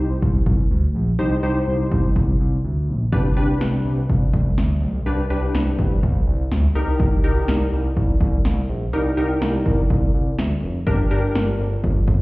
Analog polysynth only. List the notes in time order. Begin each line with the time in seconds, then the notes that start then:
Already playing: D#4 G4 C5
1.19 D#4 G4 C5
1.43 D#4 G4 C5
3.12 D4 G4 B4
3.37 D4 G4 B4
5.06 D4 G4 B4
5.30 D4 G4 B4
6.75 D#4 G4 A#4
7.24 D#4 G4 A#4
8.93 D#4 G4 A#4
9.17 D#4 G4 A#4
10.87 D4 G4 A#4
11.11 D4 G4 A#4